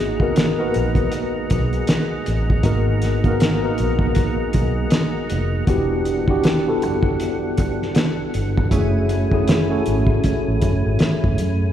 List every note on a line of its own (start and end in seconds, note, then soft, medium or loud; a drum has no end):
0.00 0.70 G#1 loud
0.00 5.64 G#3 medium
0.00 0.11 A#3 medium
0.00 0.11 B3 medium
0.00 0.12 D#4 medium
0.00 0.12 F#4 medium
0.00 0.12 G#4 medium
0.00 5.65 G#4 medium
0.00 8.68 F#5 medium
0.00 5.64 A#5 medium
0.20 0.52 A#3 medium
0.20 0.52 B3 medium
0.20 0.53 D#4 medium
0.20 0.53 F#4 medium
0.20 0.53 A#4 medium
0.20 kick medium
0.36 snare loud
0.36 closed hi-hat medium
0.59 1.86 B3 medium
0.59 1.86 D#4 medium
0.59 1.86 F#4 medium
0.59 1.85 A#4 medium
0.59 1.87 B4 medium
0.74 1.06 A#1 medium
0.74 closed hi-hat medium
0.95 kick medium
0.95 closed hi-hat soft
1.12 closed hi-hat medium
1.50 1.82 B1 medium
1.50 kick medium
1.50 closed hi-hat medium
1.73 closed hi-hat soft
1.87 snare loud
1.87 closed hi-hat medium
2.26 2.58 A1 medium
2.26 closed hi-hat medium
2.50 kick medium
2.63 3.74 G#1 loud
2.63 3.14 A#3 medium
2.63 3.15 B3 medium
2.63 3.15 D#4 medium
2.63 3.15 F#4 medium
2.63 3.16 A#4 medium
2.63 kick loud
2.63 closed hi-hat medium
3.02 snare soft
3.02 closed hi-hat medium
3.24 3.56 A#3 medium
3.24 3.56 B3 medium
3.24 3.57 D#4 medium
3.24 3.57 F#4 medium
3.24 3.57 A#4 loud
3.24 kick medium
3.24 closed hi-hat soft
3.40 snare loud
3.40 closed hi-hat medium
3.63 4.89 A#3 medium
3.63 4.90 B3 medium
3.63 4.90 D#4 medium
3.63 4.90 F#4 medium
3.63 4.90 A#4 medium
3.78 4.41 A#1 medium
3.78 closed hi-hat medium
3.99 kick medium
4.15 kick medium
4.15 closed hi-hat medium
4.53 4.85 B1 medium
4.53 kick medium
4.53 closed hi-hat medium
4.90 snare loud
4.90 closed hi-hat medium
5.30 5.62 F1 medium
5.30 closed hi-hat medium
5.67 6.83 E1 loud
5.67 8.69 E3 medium
5.67 8.69 G3 medium
5.67 6.18 B3 medium
5.67 6.19 D4 medium
5.67 8.69 D4 medium
5.67 6.19 E4 medium
5.67 6.19 F#4 medium
5.67 6.20 G4 loud
5.67 kick loud
5.67 closed hi-hat medium
6.05 closed hi-hat medium
6.28 6.60 B3 medium
6.28 6.60 D4 medium
6.28 6.60 E4 medium
6.28 6.61 F#4 medium
6.28 6.61 G4 medium
6.28 kick medium
6.44 snare loud
6.44 closed hi-hat medium
6.67 7.93 B3 medium
6.67 7.94 D4 medium
6.67 7.94 E4 medium
6.67 7.94 F#4 medium
6.67 7.95 A4 medium
6.82 7.59 F#1 loud
6.82 closed hi-hat medium
7.03 kick medium
7.20 closed hi-hat medium
7.57 7.90 G1 medium
7.57 kick medium
7.57 closed hi-hat medium
7.82 snare soft
7.95 snare loud
7.95 closed hi-hat medium
8.34 8.65 G1 medium
8.34 closed hi-hat medium
8.57 kick medium
8.71 9.82 F#1 loud
8.71 11.72 F#3 medium
8.71 9.22 A3 medium
8.71 11.72 A3 medium
8.71 9.23 C#4 medium
8.71 11.73 E4 medium
8.71 9.23 E4 medium
8.71 9.23 F#4 medium
8.71 9.23 G#4 medium
8.71 11.73 G#5 medium
8.71 kick loud
8.71 closed hi-hat medium
9.09 closed hi-hat medium
9.31 9.63 A3 medium
9.31 9.64 C#4 medium
9.31 9.64 E4 medium
9.31 9.64 F#4 medium
9.31 9.65 G#4 medium
9.31 kick medium
9.48 snare loud
9.48 closed hi-hat medium
9.70 10.97 A3 medium
9.70 10.97 C#4 medium
9.70 10.97 E4 medium
9.70 10.98 F#4 medium
9.70 10.98 A4 medium
9.86 10.17 G#1 medium
9.86 closed hi-hat medium
10.07 kick medium
10.24 kick medium
10.24 closed hi-hat medium
10.48 10.60 A1 medium
10.62 10.81 F#1 medium
10.62 kick medium
10.62 closed hi-hat medium
10.86 10.98 G#1 medium
10.99 muted fingered electric bass stroke soft
10.99 snare loud
10.99 closed hi-hat medium
11.24 11.36 F#1 medium
11.24 kick medium
11.38 11.70 F#2 loud
11.38 closed hi-hat medium